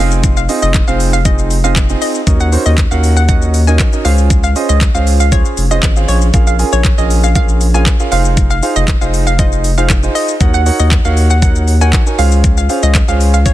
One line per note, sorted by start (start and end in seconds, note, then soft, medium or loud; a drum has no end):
0.00 0.48 F1 loud
0.00 0.39 C4 medium
0.00 0.39 D#4 medium
0.00 0.39 F4 medium
0.00 0.40 G#4 medium
0.00 0.40 D#5 loud
0.11 shaker medium
0.24 kick loud
0.24 closed hi-hat medium
0.24 shaker medium
0.37 0.45 F5 medium
0.37 shaker medium
0.49 0.79 C4 medium
0.49 0.79 D#4 medium
0.49 0.79 F4 medium
0.49 0.79 G#4 medium
0.49 0.79 D#5 medium
0.49 open hi-hat medium
0.49 shaker medium
0.62 0.82 F1 medium
0.62 0.71 D#5 medium
0.62 shaker medium
0.74 kick loud
0.74 clap loud
0.74 closed hi-hat medium
0.74 shaker medium
0.88 1.96 F1 medium
0.88 1.17 C4 medium
0.88 1.17 D#4 medium
0.88 1.17 F4 medium
0.88 1.17 G#4 medium
0.88 1.17 C5 medium
0.88 0.96 F5 medium
0.88 shaker medium
1.00 open hi-hat medium
1.00 shaker medium
1.13 1.22 F5 medium
1.13 shaker medium
1.25 1.55 C4 medium
1.25 1.55 D#4 medium
1.25 1.55 F4 medium
1.25 1.55 G#4 medium
1.25 1.35 D#5 medium
1.25 1.55 D#5 medium
1.25 kick loud
1.25 closed hi-hat medium
1.25 shaker medium
1.39 shaker medium
1.51 open hi-hat medium
1.51 shaker medium
1.64 1.83 C4 medium
1.64 1.84 D#4 medium
1.64 1.84 F4 medium
1.64 1.84 G#4 medium
1.64 1.84 D#5 medium
1.64 1.72 F5 medium
1.64 shaker medium
1.76 kick loud
1.76 clap loud
1.76 closed hi-hat medium
1.76 shaker medium
1.89 2.18 C4 medium
1.89 2.18 D#4 medium
1.89 2.19 F4 medium
1.89 2.19 G#4 medium
1.89 2.19 D#5 medium
1.89 shaker medium
2.02 2.11 D#5 medium
2.02 open hi-hat medium
2.02 shaker medium
2.15 shaker medium
2.27 2.57 D#2 loud
2.27 2.47 C#4 medium
2.27 2.47 D#4 medium
2.27 2.47 F#4 medium
2.27 2.47 A#4 medium
2.27 2.47 D#5 medium
2.27 kick loud
2.27 closed hi-hat medium
2.27 shaker medium
2.40 2.49 F#5 medium
2.40 shaker medium
2.52 2.82 C#4 medium
2.52 2.82 D#4 medium
2.52 2.82 F#4 medium
2.52 2.82 A#4 medium
2.52 2.82 C5 medium
2.52 open hi-hat medium
2.52 shaker medium
2.66 2.86 D#2 medium
2.66 2.74 D#5 medium
2.66 shaker medium
2.78 kick loud
2.78 clap loud
2.78 closed hi-hat medium
2.78 shaker medium
2.91 3.79 D#2 medium
2.91 3.20 C#4 medium
2.91 3.20 D#4 medium
2.91 3.20 F#4 medium
2.91 3.20 A#4 medium
2.91 2.99 F5 medium
2.91 3.20 F#5 medium
2.91 shaker medium
3.04 open hi-hat medium
3.04 shaker medium
3.17 3.25 F#5 medium
3.17 shaker medium
3.28 3.59 C#4 medium
3.28 3.59 D#4 medium
3.28 3.59 F#4 medium
3.28 3.59 A#4 medium
3.28 3.59 D#5 medium
3.28 3.38 F#5 medium
3.28 kick loud
3.28 closed hi-hat medium
3.28 shaker medium
3.42 shaker medium
3.54 open hi-hat medium
3.54 shaker medium
3.67 3.87 C#4 medium
3.67 3.87 D#4 medium
3.67 3.87 F#4 medium
3.67 3.87 A#4 medium
3.67 3.87 D#5 medium
3.67 3.76 G#5 medium
3.67 shaker medium
3.79 kick loud
3.79 clap loud
3.79 closed hi-hat medium
3.79 shaker medium
3.93 4.03 C#4 medium
3.93 4.05 D#4 medium
3.93 4.05 F#4 medium
3.93 4.05 A#4 medium
3.93 4.05 D#5 medium
3.93 shaker medium
4.05 4.55 C#2 loud
4.05 4.46 C#4 medium
4.05 4.46 F4 medium
4.05 4.46 G#4 medium
4.05 4.46 C5 medium
4.05 4.14 F5 medium
4.05 4.46 F5 medium
4.05 open hi-hat medium
4.05 shaker medium
4.18 shaker medium
4.30 kick loud
4.30 closed hi-hat medium
4.30 shaker medium
4.44 4.52 F5 medium
4.44 shaker medium
4.56 4.86 C#4 medium
4.56 4.86 F4 medium
4.56 4.86 G#4 medium
4.56 4.86 C5 medium
4.56 4.86 D#5 medium
4.56 open hi-hat medium
4.56 shaker medium
4.69 4.89 C#2 medium
4.69 4.77 D#5 medium
4.69 shaker medium
4.81 kick loud
4.81 clap loud
4.81 closed hi-hat medium
4.81 shaker medium
4.95 5.43 C#2 medium
4.95 5.24 C#4 medium
4.95 5.24 F4 medium
4.95 5.24 G#4 medium
4.95 5.24 C5 medium
4.95 5.03 F5 medium
4.95 5.24 F5 medium
4.95 shaker medium
5.07 open hi-hat medium
5.07 shaker medium
5.20 5.28 F5 medium
5.20 shaker medium
5.32 5.62 C#4 medium
5.32 5.62 F4 medium
5.32 5.62 G#4 medium
5.32 5.62 C5 medium
5.32 5.41 C#5 medium
5.32 5.62 F5 medium
5.32 kick loud
5.32 closed hi-hat medium
5.32 shaker medium
5.45 shaker medium
5.57 5.80 F1 medium
5.57 open hi-hat medium
5.57 shaker medium
5.71 5.90 C#4 medium
5.71 5.90 F4 medium
5.71 5.90 G#4 medium
5.71 5.91 C5 medium
5.71 5.79 D#5 medium
5.71 5.91 D#5 medium
5.71 shaker medium
5.83 6.06 G#1 medium
5.83 kick loud
5.83 clap loud
5.83 closed hi-hat medium
5.83 shaker medium
5.96 6.25 C#4 medium
5.96 6.25 F4 medium
5.96 6.25 G#4 medium
5.96 6.25 C5 medium
5.96 6.25 F5 medium
5.96 shaker medium
6.08 6.31 A#1 loud
6.08 6.18 C#5 medium
6.08 open hi-hat medium
6.08 shaker medium
6.22 shaker medium
6.34 6.64 A#1 loud
6.34 6.54 C#4 medium
6.34 6.54 F4 medium
6.34 6.54 G#4 medium
6.34 6.54 A#4 medium
6.34 6.54 F5 medium
6.34 kick loud
6.34 closed hi-hat medium
6.34 shaker medium
6.47 6.55 F5 medium
6.47 shaker medium
6.59 6.89 C#4 medium
6.59 6.89 F4 medium
6.59 6.89 G#4 medium
6.59 6.89 A#4 medium
6.59 6.89 G#5 medium
6.59 open hi-hat medium
6.59 shaker medium
6.73 6.92 A#1 medium
6.73 6.81 C#5 medium
6.73 shaker medium
6.85 kick loud
6.85 clap loud
6.85 closed hi-hat medium
6.85 shaker medium
6.98 7.86 A#1 loud
6.98 7.27 C#4 medium
6.98 7.27 F4 medium
6.98 7.27 G#4 medium
6.98 7.27 A#4 medium
6.98 7.06 D#5 medium
6.98 7.27 G#5 medium
6.98 shaker medium
7.10 open hi-hat medium
7.10 shaker medium
7.24 7.32 F5 medium
7.24 shaker medium
7.35 7.65 C#4 medium
7.35 7.65 F4 medium
7.35 7.65 G#4 medium
7.35 7.65 A#4 medium
7.35 7.45 F5 loud
7.35 7.66 F5 medium
7.35 kick loud
7.35 closed hi-hat medium
7.35 shaker medium
7.49 shaker medium
7.61 open hi-hat medium
7.61 shaker medium
7.74 7.94 C#4 medium
7.74 7.94 F4 medium
7.74 7.94 G#4 medium
7.74 7.94 A#4 medium
7.74 7.94 F5 medium
7.74 7.83 G#5 medium
7.74 shaker medium
7.86 kick loud
7.86 clap loud
7.86 closed hi-hat medium
7.86 shaker medium
8.00 8.12 C#4 medium
8.00 8.10 F4 medium
8.00 8.10 G#4 medium
8.00 8.12 A#4 medium
8.00 8.11 F5 medium
8.00 shaker medium
8.12 8.62 F1 loud
8.12 8.53 D#4 medium
8.12 8.53 F4 medium
8.12 8.53 G#4 medium
8.12 8.53 C5 medium
8.12 8.21 F5 medium
8.12 8.53 F5 loud
8.12 open hi-hat medium
8.12 shaker medium
8.25 shaker medium
8.37 kick loud
8.37 closed hi-hat medium
8.37 shaker medium
8.50 8.59 F5 medium
8.50 shaker medium
8.62 8.92 D#4 medium
8.62 8.92 F4 medium
8.62 8.93 G#4 medium
8.62 8.93 C5 medium
8.62 8.93 F5 medium
8.62 open hi-hat medium
8.62 shaker medium
8.76 8.96 F1 medium
8.76 8.84 D#5 medium
8.76 shaker medium
8.88 kick loud
8.88 clap loud
8.88 closed hi-hat medium
8.88 shaker medium
9.01 10.09 F1 medium
9.01 9.30 D#4 medium
9.01 9.30 F4 medium
9.01 9.30 G#4 medium
9.01 9.30 C5 medium
9.01 9.30 D#5 medium
9.01 9.10 F5 medium
9.01 shaker medium
9.14 open hi-hat medium
9.14 shaker medium
9.27 9.35 F5 medium
9.27 shaker medium
9.39 9.69 D#4 medium
9.39 9.69 F4 medium
9.39 9.69 G#4 medium
9.39 9.69 C5 medium
9.39 9.48 D#5 medium
9.39 9.69 D#5 medium
9.39 kick loud
9.39 closed hi-hat medium
9.39 shaker medium
9.52 shaker medium
9.64 open hi-hat medium
9.64 shaker medium
9.78 9.97 D#4 medium
9.78 9.97 F4 medium
9.78 9.97 G#4 medium
9.78 9.97 C5 medium
9.78 9.86 F5 medium
9.78 9.97 F5 medium
9.78 shaker medium
9.90 kick loud
9.90 clap loud
9.90 closed hi-hat medium
9.90 shaker medium
10.03 10.32 D#4 medium
10.03 10.32 F4 medium
10.03 10.32 G#4 medium
10.03 10.32 C5 medium
10.03 10.32 D#5 medium
10.03 shaker medium
10.15 10.24 D#5 medium
10.15 open hi-hat medium
10.15 shaker medium
10.28 shaker medium
10.40 10.71 D#2 loud
10.40 10.61 D#4 medium
10.40 10.61 F#4 medium
10.40 10.61 A#4 medium
10.40 10.61 C#5 medium
10.40 10.61 F#5 medium
10.40 kick loud
10.40 closed hi-hat medium
10.40 shaker medium
10.54 10.62 F#5 medium
10.54 shaker medium
10.66 10.96 D#4 medium
10.66 10.96 F#4 medium
10.66 10.96 A#4 medium
10.66 10.96 C#5 medium
10.66 10.96 F#5 medium
10.66 open hi-hat medium
10.66 shaker medium
10.80 10.99 D#2 medium
10.80 10.88 D#5 medium
10.80 shaker medium
10.91 kick loud
10.91 clap loud
10.91 closed hi-hat medium
10.91 shaker medium
11.05 11.93 D#2 medium
11.05 11.34 D#4 medium
11.05 11.34 F#4 medium
11.05 11.34 A#4 medium
11.05 11.34 C#5 medium
11.05 11.13 F5 medium
11.05 11.34 F#5 medium
11.05 shaker medium
11.17 open hi-hat medium
11.17 shaker medium
11.30 11.39 F#5 medium
11.30 shaker medium
11.42 11.72 D#4 medium
11.42 11.72 F#4 medium
11.42 11.72 A#4 medium
11.42 11.72 C#5 medium
11.42 11.52 F#5 medium
11.42 11.72 F#5 medium
11.42 kick loud
11.42 closed hi-hat loud
11.42 shaker medium
11.56 shaker medium
11.68 open hi-hat medium
11.68 shaker medium
11.81 12.00 D#4 medium
11.81 12.01 F#4 medium
11.81 12.01 A#4 medium
11.81 12.01 C#5 medium
11.81 12.01 F#5 medium
11.81 11.90 G#5 medium
11.81 shaker medium
11.93 kick loud
11.93 clap loud
11.93 closed hi-hat medium
11.93 shaker medium
12.06 12.18 D#4 medium
12.06 12.18 F#4 medium
12.06 12.19 A#4 medium
12.06 12.19 C#5 medium
12.06 12.19 G#5 medium
12.06 shaker medium
12.18 12.68 C#2 loud
12.18 12.60 C#4 medium
12.18 12.60 F4 medium
12.18 12.60 G#4 medium
12.18 12.60 C5 medium
12.18 12.28 F5 medium
12.18 12.60 F5 loud
12.18 open hi-hat medium
12.18 shaker medium
12.32 shaker medium
12.44 kick loud
12.44 closed hi-hat medium
12.44 shaker medium
12.57 12.66 F5 medium
12.57 shaker medium
12.69 12.99 C#4 medium
12.69 12.99 F4 medium
12.69 12.99 G#4 medium
12.69 12.99 C5 medium
12.69 12.99 F5 medium
12.69 open hi-hat medium
12.69 shaker medium
12.83 13.03 C#2 medium
12.83 12.91 D#5 medium
12.83 shaker medium
12.95 kick loud
12.95 clap loud
12.95 closed hi-hat medium
12.95 shaker medium
13.08 13.54 C#2 medium
13.08 13.37 C#4 medium
13.08 13.37 F4 medium
13.08 13.37 G#4 medium
13.08 13.37 C5 medium
13.08 13.37 F5 medium
13.08 13.17 F5 medium
13.08 shaker medium
13.21 open hi-hat medium
13.21 shaker medium
13.34 13.42 F5 medium
13.34 shaker medium
13.45 13.54 C#4 medium
13.45 13.54 F4 medium
13.45 13.54 G#4 medium
13.45 13.54 C5 medium
13.45 13.54 C#5 medium
13.45 13.54 F5 medium
13.45 kick loud
13.45 closed hi-hat medium
13.45 shaker loud